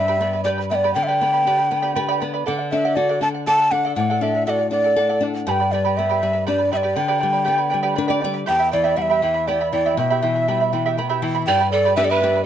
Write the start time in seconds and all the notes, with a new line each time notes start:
Already playing: G2 D4 E5
0.08 G4 B4 D5 G5 B5
0.21 B3 B4 D5 G5 B5
0.33 B4 D5 B5
0.44 G4 B4 D5 G5 B5
0.58 B4 D5 B5
0.70 B3 B4 D5 E5 G5 B5
0.75 D5
0.84 G4 B4 D5 G5 B5
0.94 D3 B4 D5 G5 B5
1.03 E5
1.08 G4 B4 D5 G5 B5
1.21 B3 B4 D5 G5 B5
1.33 B4 D5 B5
1.47 D4 G4 B4 D5 G5 B5
1.58 B4 D5 B5
1.70 B3 B4 D5 G5 B5
1.82 G4 B4 D5 G5 B5
1.95 G4 B4 D5 G5 B5
2.08 G4 B4 D5 G5 B5
2.20 B3 B4 D5 G5 B5
2.34 B4 D5 B5
2.46 D3 A4 D5 F#5
2.59 D5 F#5
2.72 D4 A4 D5 E5 F#5
2.85 A4 D5 F#5
2.96 F#4 A4 D5 F#5
3.09 A4 D5 F#5
3.21 D4 A4 D5 F#5 A5
3.35 D5 F#5
3.47 A4 D5 F#5 A5
3.59 D5 F#5
3.71 D4 A4 D5 F#5
3.85 A4 D5 F#5
3.96 A2 A4 D5 F#5
4.00 F#5
4.10 A4 D5 F#5
4.21 D4 A4 D5 E5 F#5
4.35 D5 F#5
4.47 F#4 A4 D5 E5 F#5
4.59 D5 F#5
4.71 D4 A4 D5 F#5
4.84 A4 D5 F#5
4.96 A4 D5 F#5
5.09 A4 D5 F#5
5.21 D4 A4 D5 F#5
5.35 D5 F#5
5.47 G2 G4 B4 D5 G5 A5 B5
5.51 G5
5.60 B4 D5 B5
5.72 G3 B4 D5 G5 B5
5.85 G4 B4 D5 G5 B5
5.97 B3 B4 D5 E5 G5 B5
6.09 G4 B4 D5 G5 B5
6.22 G3 B4 D5 G5 B5
6.33 B4 D5 B5
6.47 D4 G4 B4 D5 G5 B5
6.58 B4 D5 B5
6.71 G3 B4 D5 E5 G5 B5
6.77 D5
6.83 G4 B4 D5 G5 B5
6.95 D3 B4 D5 G5 B5
7.08 G4 B4 D5 G5 B5
7.20 G3 B4 D5 G5 B5
7.33 B4 D5 B5
7.44 B3 G4 B4 D5 G5 B5
7.58 B4 D5 B5
7.70 G3 B4 D5 G5 B5
7.83 G4 B4 D5 G5 B5
7.95 D4 B4 D5 G5 B5
8.08 G4 B4 D5 G5 B5
8.21 G3 B4 D5 G5 B5
8.34 B4 D5 B5
8.46 E2 E4 G4 E5 G5 B5
8.59 E4 E5 B5
8.71 E3 E4 D5 E5 G5 B5
8.84 E4 G4 E5 G5 B5
8.96 G3 E4 E5 F#5 G5 B5
9.02 E5
9.10 E4 G4 E5 G5 B5
9.22 E3 E4 E5 G5 B5
9.34 E4 E5 B5
9.47 B3 E4 G4 D5 E5 G5 B5
9.61 E4 E5 B5
9.72 E3 E4 D5 E5 G5 B5
9.86 E4 G4 E5 G5 B5
9.97 B2 E4 E5 G5 B5
10.10 E4 G4 E5 G5 B5
10.22 E3 E4 E5 G5 B5
10.35 E4 E5 B5
10.48 G3 E4 G4 E5 G5 B5
10.60 E4 E5 B5
10.72 E3 E4 E5 G5 B5
10.86 E4 G4 E5 G5 B5
10.97 B3 E4 E5 G5 B5
11.09 E4 G4 E5 G5 B5
11.22 E3 E4 E5 G5 B5
11.35 E4 E5 B5
11.47 G2 G4 B4 D5 G5 B5
11.60 B4 D5 B5
11.72 A4 B4 D5 G5 B5
11.85 G4 B4 D5 G5 B5
11.96 B3 D4 G4 B4 D5 E5 G5 B5
12.03 A4 D5
12.10 G4 B4 D5 E5 G5 B5
12.23 B3 D4 G4 B4 D5 G5 B5
12.36 B4 D5 B5